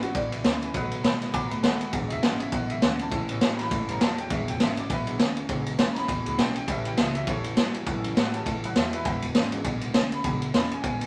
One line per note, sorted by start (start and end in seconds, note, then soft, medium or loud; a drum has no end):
0.00 0.13 E2 medium
0.00 0.13 C#3 loud
0.00 0.13 E3 soft
0.00 0.14 G#3 medium
0.00 0.15 D4 medium
0.00 0.15 E4 medium
0.00 0.15 F#4 loud
0.00 0.10 B4 medium
0.00 0.10 E5 medium
0.00 0.10 F#5 medium
0.00 ride medium
0.14 0.39 B1 medium
0.14 0.42 E2 medium
0.14 0.42 B2 medium
0.14 0.32 E3 medium
0.14 0.32 G#3 medium
0.14 0.32 D4 medium
0.14 0.31 E4 medium
0.14 0.26 B4 medium
0.14 0.44 D5 loud
0.14 0.26 E5 medium
0.14 0.26 F#5 medium
0.14 kick loud
0.14 ride medium
0.32 0.43 E3 soft
0.32 0.44 G#3 soft
0.32 0.44 D4 medium
0.32 0.44 E4 medium
0.32 0.40 B4 medium
0.32 0.40 E5 medium
0.32 0.40 B5 medium
0.32 ride medium
0.44 0.69 D2 medium
0.44 0.62 E2 medium
0.44 0.72 E2 medium
0.44 0.62 B2 medium
0.44 0.72 C#3 medium
0.44 0.62 E3 medium
0.44 0.62 G#3 medium
0.44 0.61 D4 loud
0.44 0.60 E4 medium
0.44 0.56 B4 medium
0.44 0.56 E5 medium
0.44 0.56 G#5 loud
0.44 snare loud
0.44 ride medium
0.61 0.75 E3 medium
0.61 0.75 G#3 medium
0.61 0.74 D4 medium
0.61 0.74 E4 medium
0.61 0.70 B4 medium
0.61 0.70 E5 medium
0.61 0.70 G#5 loud
0.61 ride medium
0.74 0.99 B1 loud
0.74 0.92 B2 medium
0.74 1.02 B2 medium
0.74 0.92 D#3 loud
0.74 1.02 F#3 loud
0.74 0.92 A3 loud
0.74 0.91 B3 medium
0.74 0.90 F#4 loud
0.74 0.85 B4 loud
0.74 0.85 D#5 loud
0.74 0.85 F#5 loud
0.74 kick loud
0.74 ride medium
0.91 1.02 A3 soft
0.91 1.03 B3 medium
0.91 1.03 F#4 medium
0.91 0.99 B4 medium
0.91 1.00 D#5 medium
0.91 1.00 F#5 loud
0.91 ride medium
1.03 1.21 B2 medium
1.03 1.28 B2 medium
1.03 1.31 B2 medium
1.03 1.21 D#3 medium
1.03 1.32 G#3 medium
1.03 1.21 A3 medium
1.03 1.20 B3 medium
1.03 1.19 F#4 medium
1.03 1.15 B4 medium
1.03 1.15 D#5 medium
1.03 1.15 F#5 loud
1.03 1.33 B5 loud
1.03 snare loud
1.03 ride medium
1.20 1.33 A3 soft
1.20 1.33 B3 medium
1.20 1.33 F#4 medium
1.20 1.29 B4 medium
1.20 1.29 D#5 medium
1.20 1.29 F#5 medium
1.20 snare soft
1.20 ride medium
1.33 1.48 B2 medium
1.33 1.61 B2 medium
1.33 1.51 D#3 medium
1.33 1.61 F#3 medium
1.33 1.51 A3 medium
1.33 1.51 B3 medium
1.33 1.49 F#4 medium
1.33 1.44 B4 medium
1.33 1.44 D#5 medium
1.33 1.44 F#5 medium
1.33 1.50 D6 loud
1.33 kick loud
1.33 ride medium
1.46 1.48 A#5 medium
1.50 1.61 A2 medium
1.50 1.62 A3 soft
1.50 1.63 B3 medium
1.50 1.63 F#4 medium
1.50 1.59 B4 medium
1.50 1.59 D#5 medium
1.50 1.59 F#5 medium
1.50 1.63 B5 loud
1.50 ride medium
1.62 1.88 D#2 medium
1.62 1.80 B2 medium
1.62 1.91 B2 medium
1.62 1.81 D#3 medium
1.62 1.91 G#3 medium
1.62 1.81 A3 medium
1.62 1.80 B3 medium
1.62 1.79 F#4 medium
1.62 1.91 A4 medium
1.62 1.74 B4 loud
1.62 1.74 D#5 medium
1.62 1.92 F#5 loud
1.62 1.74 F#5 medium
1.62 snare loud
1.62 ride medium
1.80 1.93 A3 soft
1.80 1.93 B3 medium
1.80 1.93 F#4 medium
1.80 1.88 B4 medium
1.80 1.88 D#5 medium
1.80 1.88 F#5 medium
1.80 ride medium
1.92 2.07 E1 loud
1.92 2.10 E2 medium
1.92 2.20 E2 medium
1.92 2.10 B2 medium
1.92 2.21 B2 loud
1.92 2.11 E3 medium
1.92 2.38 F#3 medium
1.92 2.38 G#3 medium
1.92 2.11 G#3 medium
1.92 2.10 D4 medium
1.92 2.38 D4 medium
1.92 2.09 E4 loud
1.92 kick loud
1.92 ride medium
2.08 2.20 E1 medium
2.08 2.23 D4 medium
2.08 2.23 E4 medium
2.08 2.09 D#5 medium
2.08 ride medium
2.12 2.22 E3 soft
2.12 2.22 G#3 soft
2.12 2.24 E5 loud
2.22 2.47 G#1 medium
2.22 2.50 E2 medium
2.22 2.40 E2 medium
2.22 2.40 B2 medium
2.22 2.50 C#3 medium
2.22 2.40 E3 medium
2.22 2.39 G#3 medium
2.22 2.39 D4 medium
2.22 2.38 E4 medium
2.22 2.41 F#5 medium
2.22 snare loud
2.22 ride medium
2.38 2.51 E3 soft
2.38 2.51 G#3 medium
2.38 2.52 D4 medium
2.38 2.52 E4 medium
2.38 2.39 D#5 medium
2.38 ride medium
2.42 2.53 E5 medium
2.52 2.77 B1 medium
2.52 2.80 E2 medium
2.52 2.80 B2 medium
2.52 2.70 E3 medium
2.52 2.70 G#3 medium
2.52 2.69 D4 medium
2.52 2.69 E4 medium
2.52 2.70 F#5 medium
2.52 kick loud
2.52 ride medium
2.66 2.82 E4 medium
2.66 2.68 D#5 medium
2.66 ride medium
2.71 2.81 E3 soft
2.71 2.82 G#3 medium
2.71 2.82 D4 medium
2.71 2.83 E5 loud
2.82 3.06 D2 medium
2.82 3.00 E2 medium
2.82 3.09 E2 medium
2.82 3.00 B2 medium
2.82 3.10 C#3 medium
2.82 3.00 E3 medium
2.82 2.99 G#3 medium
2.82 2.99 D4 medium
2.82 2.98 E4 medium
2.82 3.00 F#5 medium
2.82 snare loud
2.82 ride medium
2.99 3.10 E3 soft
2.99 3.12 G#3 soft
2.99 3.12 D4 soft
2.99 3.11 E4 medium
2.99 3.30 A5 loud
2.99 ride medium
3.11 3.36 A1 loud
3.11 3.29 A2 medium
3.11 3.39 A2 medium
3.11 3.29 E3 medium
3.11 3.39 E3 loud
3.11 3.29 G3 medium
3.11 3.29 C#4 medium
3.11 3.27 E4 loud
3.11 kick loud
3.11 ride medium
3.29 3.41 G3 medium
3.29 3.69 B3 medium
3.29 3.41 C#4 medium
3.29 3.70 C#4 medium
3.29 3.41 E4 medium
3.29 ride medium
3.41 3.59 A2 loud
3.41 3.66 A2 medium
3.41 3.69 A2 medium
3.41 3.59 E3 loud
3.41 3.69 F#3 medium
3.41 3.59 G3 loud
3.41 3.59 C#4 loud
3.41 3.58 E4 loud
3.41 snare loud
3.41 ride medium
3.57 3.71 C#4 medium
3.57 3.71 E4 medium
3.57 3.58 A#5 medium
3.57 snare soft
3.57 ride medium
3.61 3.71 G3 soft
3.61 3.89 B5 loud
3.71 3.85 A2 loud
3.71 3.99 A2 medium
3.71 3.89 E3 medium
3.71 3.99 E3 medium
3.71 3.89 G3 medium
3.71 3.88 C#4 medium
3.71 kick loud
3.71 ride loud
3.88 3.98 G2 medium
3.88 4.00 G3 medium
3.88 4.00 B3 soft
3.88 4.00 C#4 medium
3.88 4.00 E4 medium
3.88 4.02 A#5 medium
3.88 ride medium
4.00 4.25 E2 loud
4.00 4.18 A2 medium
4.00 4.28 A2 medium
4.00 4.18 E3 medium
4.00 4.28 F#3 loud
4.00 4.18 G3 medium
4.00 4.18 C#4 medium
4.00 4.16 E4 medium
4.00 4.19 A5 medium
4.00 snare loud
4.00 ride medium
4.18 4.31 G3 soft
4.18 4.31 C#4 medium
4.18 4.30 E4 medium
4.18 4.31 G5 medium
4.18 ride medium
4.30 4.45 E1 medium
4.30 4.58 E2 medium
4.30 4.48 E2 medium
4.30 4.48 B2 medium
4.30 4.58 B2 loud
4.30 4.48 E3 medium
4.30 4.52 F#3 medium
4.30 4.52 G#3 medium
4.30 4.47 G#3 medium
4.30 4.47 D4 medium
4.30 4.52 D4 medium
4.30 4.46 E4 medium
4.30 4.48 E5 medium
4.30 kick loud
4.30 ride medium
4.47 4.58 E1 medium
4.47 4.59 E3 soft
4.47 4.59 G#3 medium
4.47 4.59 D4 medium
4.47 4.60 E4 medium
4.47 4.61 G5 medium
4.47 ride medium
4.59 4.84 G#1 medium
4.59 4.77 E2 medium
4.59 4.87 E2 medium
4.59 4.77 B2 medium
4.59 4.87 C#3 medium
4.59 4.77 E3 medium
4.59 4.77 G#3 loud
4.59 4.76 D4 medium
4.59 4.75 E4 loud
4.59 4.78 E5 medium
4.59 snare loud
4.59 ride medium
4.77 4.88 E3 soft
4.77 4.89 G#3 soft
4.77 4.90 D4 medium
4.77 4.89 E4 medium
4.77 4.91 D5 medium
4.77 ride medium
4.90 5.14 B1 loud
4.90 5.17 E2 medium
4.90 5.17 B2 medium
4.90 5.07 E3 medium
4.90 5.07 G#3 medium
4.90 5.06 D4 medium
4.90 5.05 E4 medium
4.90 5.18 B4 medium
4.90 5.20 E5 loud
4.90 kick loud
4.90 ride medium
5.07 5.19 E3 soft
5.07 5.18 F#3 medium
5.07 5.19 G#3 soft
5.07 5.19 G#3 medium
5.07 5.19 D4 medium
5.07 5.19 E4 medium
5.07 ride medium
5.19 5.44 D2 medium
5.19 5.46 E2 medium
5.19 5.47 C#3 loud
5.19 5.37 G#3 medium
5.19 snare loud
5.19 ride medium
5.37 5.49 E3 medium
5.37 5.49 G#3 medium
5.37 5.49 D4 medium
5.37 5.49 E4 medium
5.37 ride medium
5.49 5.73 C#2 medium
5.49 5.76 E2 medium
5.49 5.66 E2 loud
5.49 5.67 B2 loud
5.49 5.77 B2 loud
5.49 5.67 E3 loud
5.49 5.70 F#3 medium
5.49 5.70 G#3 medium
5.49 5.67 G#3 loud
5.49 5.71 D4 medium
5.49 5.66 D4 loud
5.49 5.65 E4 loud
5.49 kick loud
5.49 ride medium
5.66 5.78 E3 soft
5.66 5.78 G#3 medium
5.66 5.79 D4 medium
5.66 5.79 E4 medium
5.66 ride medium
5.79 6.03 E2 medium
5.79 5.96 E2 medium
5.79 6.06 E2 medium
5.79 5.96 B2 medium
5.79 6.06 C#3 loud
5.79 5.96 E3 medium
5.79 5.96 G#3 loud
5.79 5.95 D4 loud
5.79 5.95 E4 loud
5.79 snare loud
5.79 ride medium
5.93 6.08 D4 medium
5.93 6.08 E4 medium
5.93 5.95 A#5 medium
5.93 snare soft
5.93 ride medium
5.97 6.07 E3 soft
5.97 6.07 G#3 soft
5.97 6.26 B5 loud
6.08 6.35 E2 medium
6.08 6.22 E2 medium
6.08 6.36 B2 loud
6.08 6.25 E3 medium
6.08 6.26 G#3 medium
6.08 6.25 D4 medium
6.08 6.24 E4 medium
6.08 kick loud
6.08 ride medium
6.25 6.36 D2 medium
6.25 6.37 E3 soft
6.25 6.37 F#3 medium
6.25 6.37 G#3 soft
6.25 6.37 G#3 medium
6.25 6.37 D4 medium
6.25 6.38 D4 medium
6.25 6.38 E4 medium
6.25 6.39 B5 medium
6.25 ride medium
6.38 6.68 B1 medium
6.38 6.55 E2 medium
6.38 6.65 E2 medium
6.38 6.55 B2 medium
6.38 6.65 C#3 medium
6.38 6.55 E3 medium
6.38 6.55 G#3 medium
6.38 6.54 D4 medium
6.38 6.54 E4 medium
6.38 6.56 G5 medium
6.38 snare loud
6.38 ride medium
6.55 6.67 E3 soft
6.55 6.68 G#3 soft
6.55 6.68 D4 medium
6.55 6.68 E4 medium
6.55 6.68 G5 medium
6.55 ride medium
6.67 6.82 A1 medium
6.67 6.85 A2 medium
6.67 6.95 A2 medium
6.67 6.85 E3 medium
6.67 6.95 E3 loud
6.67 7.12 G3 medium
6.67 6.85 G3 medium
6.67 7.13 B3 medium
6.67 7.13 C#4 medium
6.67 6.84 C#4 medium
6.67 6.83 E4 loud
6.67 6.86 E5 medium
6.67 kick loud
6.67 ride medium
6.84 6.95 A1 medium
6.84 6.97 G3 soft
6.84 6.97 C#4 soft
6.84 6.97 E4 medium
6.84 6.98 G5 medium
6.84 ride medium
6.97 7.22 C#2 medium
6.97 7.14 A2 medium
6.97 7.25 A2 medium
6.97 7.15 E3 medium
6.97 7.25 F#3 medium
6.97 7.15 G3 loud
6.97 7.15 C#4 medium
6.97 7.15 E5 medium
6.97 snare loud
6.97 ride medium
7.14 7.26 G3 soft
7.14 7.27 C#4 medium
7.14 7.27 E4 medium
7.14 7.28 E5 loud
7.14 ride medium
7.26 7.51 E2 medium
7.26 7.54 A2 medium
7.26 7.44 E3 medium
7.26 7.54 E3 medium
7.26 7.43 G3 soft
7.26 7.44 G3 medium
7.26 7.43 B3 soft
7.26 7.44 C#4 medium
7.26 7.43 C#4 medium
7.26 7.42 E4 medium
7.26 7.56 A4 medium
7.26 7.57 C#5 loud
7.26 kick loud
7.26 ride medium
7.44 7.56 G3 soft
7.44 7.56 C#4 soft
7.44 7.56 E4 medium
7.44 ride medium
7.56 7.81 G2 loud
7.56 7.74 A2 medium
7.56 7.84 A2 medium
7.56 7.74 E3 medium
7.56 7.84 F#3 medium
7.56 7.74 G3 medium
7.56 7.73 C#4 medium
7.56 7.72 E4 loud
7.56 snare loud
7.56 ride medium
7.73 7.85 G3 medium
7.73 7.86 C#4 medium
7.73 7.86 E4 medium
7.73 ride medium
7.86 8.11 F#2 loud
7.86 8.03 A2 loud
7.86 8.14 A2 medium
7.86 8.04 E3 loud
7.86 8.14 E3 loud
7.86 8.04 G3 loud
7.86 8.32 B3 medium
7.86 8.03 C#4 loud
7.86 8.33 C#4 medium
7.86 8.02 E4 loud
7.86 kick loud
7.86 ride medium
8.03 8.15 G3 medium
8.03 8.15 C#4 medium
8.03 8.16 E4 medium
8.03 ride medium
8.15 8.33 A2 medium
8.15 8.43 A2 medium
8.15 8.40 A2 loud
8.15 8.33 E3 loud
8.15 8.43 F#3 loud
8.15 8.33 G3 medium
8.15 8.33 C#4 medium
8.15 8.32 E4 loud
8.15 8.34 F#5 loud
8.15 snare loud
8.15 ride medium
8.31 8.45 G3 medium
8.31 8.45 G3 soft
8.31 8.45 B3 soft
8.31 8.45 C#4 medium
8.31 8.46 C#4 medium
8.31 8.46 E4 medium
8.31 8.33 G#5 medium
8.31 ride medium
8.36 8.63 A5 loud
8.45 8.73 A2 medium
8.45 8.60 A2 medium
8.45 8.63 E3 medium
8.45 8.73 E3 loud
8.45 8.63 G3 medium
8.45 8.62 C#4 medium
8.45 8.61 E4 medium
8.45 kick loud
8.45 ride medium
8.63 8.73 G2 loud
8.63 8.75 G3 medium
8.63 8.75 C#4 medium
8.63 8.75 E4 medium
8.63 8.76 F#5 loud
8.63 ride medium
8.75 9.00 E2 medium
8.75 8.93 A2 medium
8.75 9.03 A2 medium
8.75 8.93 E3 medium
8.75 9.03 F#3 medium
8.75 8.93 G3 medium
8.75 8.92 C#4 medium
8.75 8.92 E4 medium
8.75 8.93 E5 medium
8.75 snare loud
8.75 ride medium
8.93 9.05 G3 medium
8.93 9.06 C#4 medium
8.93 9.05 E4 medium
8.93 9.21 B4 medium
8.93 9.23 E5 loud
8.93 ride medium
9.05 9.19 E1 loud
9.05 9.22 E2 medium
9.05 9.32 E2 medium
9.05 9.22 B2 medium
9.05 9.32 B2 loud
9.05 9.22 E3 medium
9.05 9.22 G#3 medium
9.05 9.22 D4 loud
9.05 9.21 E4 loud
9.05 kick loud
9.05 ride loud
9.22 9.33 E1 loud
9.22 9.34 E3 soft
9.22 9.34 G#3 medium
9.22 9.34 D4 medium
9.22 9.35 E4 medium
9.22 ride medium
9.35 9.59 G#1 medium
9.35 9.52 E2 medium
9.35 9.62 E2 medium
9.35 9.52 B2 loud
9.35 9.62 C#3 loud
9.35 9.52 E3 loud
9.35 9.52 G#3 loud
9.35 9.51 D4 loud
9.35 9.50 E4 loud
9.35 snare loud
9.35 ride medium
9.52 9.63 E3 soft
9.52 9.71 F#3 medium
9.52 9.64 G#3 medium
9.52 9.71 G#3 medium
9.52 9.64 D4 medium
9.52 9.71 D4 medium
9.52 9.64 E4 medium
9.52 ride medium
9.64 9.89 B1 loud
9.64 9.92 E2 medium
9.64 9.92 B2 loud
9.64 9.82 E3 medium
9.64 9.82 G#3 medium
9.64 9.82 D4 medium
9.64 9.80 E4 medium
9.64 kick loud
9.64 ride loud
9.81 9.94 E3 medium
9.81 9.94 G#3 medium
9.81 9.95 D4 medium
9.81 9.94 E4 medium
9.81 ride medium
9.94 10.18 D2 medium
9.94 10.22 E2 medium
9.94 10.12 E2 medium
9.94 10.12 B2 loud
9.94 10.22 C#3 medium
9.94 10.12 E3 medium
9.94 10.12 G#3 loud
9.94 10.12 D4 loud
9.94 10.11 E4 loud
9.94 snare loud
9.94 ride medium
10.12 10.24 E3 soft
10.12 10.24 G#3 medium
10.12 10.24 D4 medium
10.12 10.24 E4 medium
10.12 10.42 B5 loud
10.12 ride medium
10.24 10.48 C#2 medium
10.24 10.51 E2 medium
10.24 10.42 E2 medium
10.24 10.51 B2 medium
10.24 10.42 B2 medium
10.24 10.42 E3 medium
10.24 10.45 F#3 medium
10.24 10.45 G#3 medium
10.24 10.42 G#3 medium
10.24 10.46 D4 medium
10.24 10.41 D4 medium
10.24 10.40 E4 medium
10.24 kick loud
10.24 ride medium
10.42 10.54 E3 soft
10.42 10.54 G#3 medium
10.42 10.54 D4 medium
10.42 10.54 E4 medium
10.42 ride medium
10.54 10.81 E2 medium
10.54 10.78 E2 medium
10.54 10.71 E2 medium
10.54 10.71 B2 medium
10.54 10.81 C#3 medium
10.54 10.71 E3 medium
10.54 10.72 G#3 medium
10.54 10.71 D4 medium
10.54 10.71 E4 loud
10.54 10.72 B5 medium
10.54 snare loud
10.54 ride medium
10.71 10.83 E3 soft
10.71 10.83 G#3 medium
10.71 10.84 D4 medium
10.71 10.84 E4 medium
10.71 10.84 G#5 medium
10.71 ride medium
10.82 10.98 E2 medium
10.82 11.06 E2 medium
10.82 11.06 B2 loud
10.82 11.01 E3 medium
10.82 11.01 G#3 medium
10.82 11.01 D4 medium
10.82 10.84 G5 medium
10.82 kick loud
10.82 ride medium
10.86 11.00 E4 medium
10.86 11.06 G#5 loud
11.01 11.06 D2 medium
11.01 11.06 E3 soft
11.01 11.06 G#3 medium
11.01 11.06 D4 medium
11.01 11.06 E4 medium
11.01 ride medium